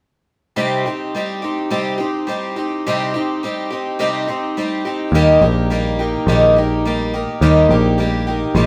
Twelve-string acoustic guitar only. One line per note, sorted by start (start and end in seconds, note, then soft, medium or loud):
0.56 0.85 C3 medium
0.56 0.85 G3 medium
0.56 0.85 C4 medium
0.56 0.85 D#4 medium
0.56 0.84 G4 medium
0.86 1.14 C4 soft
0.86 1.15 D#4 soft
0.86 1.14 G4 soft
1.15 1.43 G3 soft
1.15 1.43 C4 soft
1.15 1.43 D#4 medium
1.15 1.41 G4 medium
1.42 1.70 C4 soft
1.42 1.70 D#4 soft
1.42 1.70 G4 soft
1.70 1.99 C3 medium
1.70 1.99 G3 medium
1.70 1.99 C4 medium
1.70 1.98 D#4 medium
1.70 1.97 G4 medium
1.98 2.27 C4 soft
1.98 2.28 D#4 soft
1.98 2.27 G4 soft
2.27 2.56 G3 soft
2.27 2.57 C4 medium
2.27 2.56 D#4 medium
2.27 2.55 G4 medium
2.56 2.86 C4 soft
2.56 2.86 D#4 soft
2.56 2.85 G4 soft
2.87 3.15 C3 medium
2.87 3.14 G3 medium
2.87 3.15 C4 medium
2.87 3.14 D#4 medium
2.87 3.13 G4 medium
3.14 3.43 C4 soft
3.14 3.43 D#4 soft
3.14 3.42 G4 soft
3.43 3.71 G3 soft
3.43 3.72 C4 medium
3.43 3.71 D#4 medium
3.43 3.69 G4 medium
3.70 3.99 C4 soft
3.70 3.99 D#4 soft
3.70 3.99 G4 soft
3.99 4.28 C3 medium
3.99 4.28 G3 medium
3.99 4.28 C4 medium
3.99 4.27 D#4 medium
3.99 4.26 G4 medium
4.27 4.56 C4 soft
4.27 4.57 D#4 soft
4.27 4.56 G4 soft
4.57 4.85 G3 medium
4.57 4.86 C4 medium
4.57 4.85 D#4 medium
4.57 4.84 G4 medium
4.85 5.15 C4 soft
4.85 5.14 D#4 soft
4.85 5.14 G4 soft
5.14 5.43 D#3 medium
5.14 5.43 G3 medium
5.14 5.43 A#3 medium
5.14 5.41 D#4 medium
5.14 5.40 G4 medium
5.42 5.70 A#3 soft
5.42 5.71 D#4 soft
5.42 5.70 G4 soft
5.70 5.99 G3 medium
5.70 5.99 A#3 medium
5.70 5.99 D#4 medium
5.70 5.98 G4 medium
5.99 6.28 A#3 soft
5.99 6.28 D#4 soft
5.99 6.27 G4 soft
6.28 6.56 D#3 medium
6.28 6.57 G3 medium
6.28 6.57 A#3 medium
6.28 6.57 D#4 medium
6.28 6.55 G4 medium
6.56 6.85 A#3 soft
6.56 6.86 D#4 soft
6.56 6.85 G4 soft
6.85 7.13 G3 medium
6.85 7.14 A#3 medium
6.85 7.14 D#4 medium
6.85 7.12 G4 medium
7.14 7.41 A#3 soft
7.14 7.41 D#4 soft
7.14 7.42 G4 soft
7.42 7.70 D#3 medium
7.42 7.70 G3 medium
7.42 7.70 A#3 medium
7.42 7.70 D#4 medium
7.42 7.69 G4 medium
7.70 7.97 A#3 soft
7.70 7.99 D#4 soft
7.70 7.99 G4 soft
7.98 8.27 G3 medium
7.98 8.27 A#3 medium
7.98 8.27 D#4 medium
7.98 8.26 G4 medium
8.27 8.56 A#3 soft
8.27 8.55 D#4 soft
8.27 8.55 G4 soft
8.55 8.66 D#3 medium
8.55 8.66 G3 medium
8.55 8.66 A#3 medium
8.55 8.66 D#4 medium
8.55 8.66 G4 medium